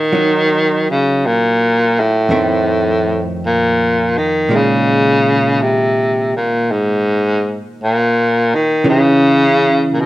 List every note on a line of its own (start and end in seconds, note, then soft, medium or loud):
0.00 0.87 D#3 medium
0.00 0.10 G#3 soft
0.00 0.11 C#4 soft
0.13 2.30 F#3 soft
0.13 2.31 D#4 soft
0.90 1.27 C#3 medium
1.26 2.01 A#2 medium
2.00 3.29 A2 medium
2.29 4.49 F2 soft
2.29 4.49 D#3 medium
2.29 4.50 A3 medium
2.29 4.50 C4 medium
3.46 4.19 A#2 medium
4.18 4.57 D#3 medium
4.49 8.84 A#2 soft
4.49 8.84 D#3 soft
4.49 8.86 G#3 soft
4.56 5.63 C#3 medium
5.62 6.33 C3 medium
6.36 6.73 A#2 medium
6.71 7.60 G#2 medium
7.83 8.56 A#2 medium
8.54 8.87 D#3 medium
8.84 10.06 C#3 soft
8.84 10.06 E3 soft
8.84 10.06 D#4 soft
8.90 9.87 C#3 medium
9.93 10.02 A#2 medium
10.01 10.06 B2 medium